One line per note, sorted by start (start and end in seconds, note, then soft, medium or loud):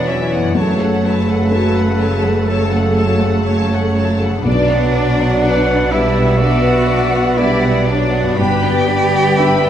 0.00 0.52 E1 soft
0.00 0.42 E2 soft
0.00 0.52 E2 medium
0.00 0.46 E4 soft
0.00 0.52 E4 soft
0.00 0.45 F#4 soft
0.00 0.51 F#4 soft
0.00 0.52 B4 soft
0.00 0.56 B4 soft
0.00 0.55 D5 medium
0.06 0.56 E3 medium
0.06 0.31 F#3 soft
0.06 0.56 C#4 medium
0.06 0.56 C#5 medium
0.06 0.32 E5 soft
0.31 0.56 B3 soft
0.31 0.56 F#5 soft
0.37 4.27 F#2 soft
0.42 4.32 C#4 soft
0.46 4.36 F#4 soft
0.50 4.40 A4 soft
0.54 4.42 F#1 medium
0.54 1.49 F#2 soft
0.54 4.42 F#2 medium
0.54 4.29 C#3 medium
0.54 0.78 F#3 soft
0.54 4.43 A3 medium
0.54 4.21 A4 medium
0.54 0.78 C#5 soft
0.54 1.06 C#5 medium
0.54 0.79 A5 soft
0.79 1.04 A3 soft
0.79 1.04 A4 soft
0.79 1.04 F#5 soft
1.04 1.28 F#3 soft
1.04 2.50 B4 medium
1.04 1.29 C#5 soft
1.04 1.28 A5 soft
1.27 1.52 A3 soft
1.27 1.52 A4 soft
1.27 1.53 F#5 soft
1.51 1.74 F#3 soft
1.51 4.42 C#4 soft
1.51 4.42 F#4 soft
1.51 4.42 A4 soft
1.51 1.74 C#5 soft
1.51 1.74 A5 soft
1.76 2.00 A3 soft
1.76 2.00 A4 soft
1.76 2.01 F#5 soft
1.99 2.24 F#3 soft
1.99 2.24 C#5 soft
1.99 2.25 A5 soft
2.23 2.49 A3 soft
2.23 2.49 A4 soft
2.23 2.49 F#5 soft
2.48 2.71 F#3 soft
2.48 3.46 A4 medium
2.48 2.72 C#5 soft
2.48 2.72 A5 medium
2.73 2.98 A3 soft
2.73 2.98 A4 soft
2.73 2.98 F#5 soft
2.96 3.22 F#3 soft
2.96 3.22 C#5 soft
2.96 3.22 A5 soft
3.22 3.47 A3 soft
3.22 3.47 A4 soft
3.22 3.47 F#5 soft
3.46 3.70 F#3 soft
3.46 3.69 C#5 medium
3.46 4.16 C#5 medium
3.46 3.70 A5 medium
3.70 3.97 A3 soft
3.70 3.96 A4 soft
3.70 3.97 F#5 soft
3.95 4.22 F#3 soft
3.95 4.21 C#5 soft
3.95 4.22 A5 soft
4.20 4.46 A3 soft
4.20 4.46 A4 soft
4.20 4.47 F#5 soft
4.28 8.18 B2 medium
4.33 8.23 B3 soft
4.37 8.27 D4 soft
4.42 5.40 B1 medium
4.42 8.34 B2 medium
4.42 5.92 D4 medium
4.42 8.32 B4 soft
4.42 4.69 B4 medium
4.42 5.89 D5 medium
4.46 8.35 B1 medium
4.46 5.89 F#3 medium
4.46 4.69 D4 medium
4.46 4.69 D5 medium
4.46 5.44 D5 medium
4.70 4.95 B3 soft
4.70 4.95 D5 soft
4.70 4.95 F#5 soft
4.93 5.20 D4 soft
4.93 5.18 B4 medium
4.93 5.19 D5 medium
5.17 5.44 B3 soft
5.17 5.43 D5 soft
5.17 5.44 F#5 soft
5.41 8.35 B3 soft
5.41 5.66 D4 soft
5.41 8.35 D4 soft
5.41 5.65 B4 soft
5.41 8.35 B4 soft
5.41 5.66 D5 medium
5.41 5.93 F#5 medium
5.65 5.93 B3 soft
5.65 5.91 D5 soft
5.65 5.92 F#5 soft
5.89 6.41 G3 medium
5.89 6.17 D4 medium
5.89 6.40 E4 medium
5.89 6.15 B4 medium
5.89 6.17 D5 soft
5.89 6.40 E5 medium
5.89 7.39 E5 medium
6.14 6.41 B3 soft
6.14 6.40 D5 soft
6.14 6.41 F#5 soft
6.38 7.39 B3 medium
6.38 6.63 D4 soft
6.38 7.38 F#4 medium
6.38 6.62 B4 medium
6.38 6.63 D5 medium
6.38 7.38 F#5 medium
6.63 6.90 B3 soft
6.63 6.89 D5 soft
6.63 6.89 F#5 soft
6.87 7.15 D4 soft
6.87 7.13 B4 soft
6.87 7.13 D5 soft
7.12 7.39 B3 soft
7.12 7.38 D5 soft
7.12 7.38 F#5 soft
7.36 7.62 D4 soft
7.36 7.89 E4 medium
7.36 7.60 B4 soft
7.36 7.61 D5 medium
7.36 8.38 D5 medium
7.36 7.88 E5 medium
7.40 7.89 G3 medium
7.61 7.89 B3 soft
7.61 7.87 D5 soft
7.61 7.88 F#5 soft
7.86 8.39 F#3 medium
7.86 8.39 D4 medium
7.86 8.14 D4 soft
7.86 8.13 B4 soft
7.86 8.13 D5 soft
7.86 8.38 D5 medium
8.11 8.39 B3 soft
8.11 8.39 D5 soft
8.11 8.37 F#5 soft
8.20 9.70 G2 medium
8.25 9.70 B3 soft
8.30 9.70 D4 soft
8.34 9.70 G4 medium
8.34 9.70 B4 soft
8.34 8.62 B4 medium
8.34 9.60 G5 medium
8.34 8.61 B5 medium
8.38 9.70 G1 medium
8.38 9.70 G2 medium
8.38 9.35 G2 medium
8.38 9.70 B3 medium
8.38 8.62 D4 medium
8.38 8.90 B4 medium
8.62 8.88 B3 soft
8.62 8.88 D5 medium
8.62 8.88 G5 soft
8.88 9.13 D4 soft
8.88 9.13 B4 soft
8.88 9.39 D5 medium
8.88 9.13 B5 soft
9.13 9.38 B3 soft
9.13 9.38 D5 soft
9.13 9.38 G5 soft
9.37 9.70 B3 soft
9.37 9.60 D4 soft
9.37 9.70 D4 soft
9.37 9.61 B4 soft
9.37 9.70 B4 soft
9.37 9.70 E5 medium
9.37 9.61 B5 medium
9.62 9.70 B3 soft
9.62 9.70 D5 soft
9.62 9.70 G5 soft